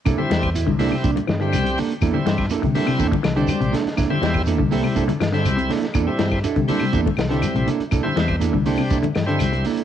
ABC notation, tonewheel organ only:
X:1
M:4/4
L:1/16
Q:1/4=122
K:Cmix
V:1 name="Tonewheel organ"
z [G,CE]3 z2 [G,CE]3 z2 [G,CG]3 z2 | z [G,CE]3 z2 [G,CE]3 z2 [G,CD]3 z2 | z [G,CE]3 z2 [G,CE]3 z2 [G,CE]3 z2 | z [G,CE]3 z2 [G,CE]3 z2 [G,CE]3 z2 |
z [G,CE]3 z2 [G,CD]3 z2 [G,CE]3 z2 |]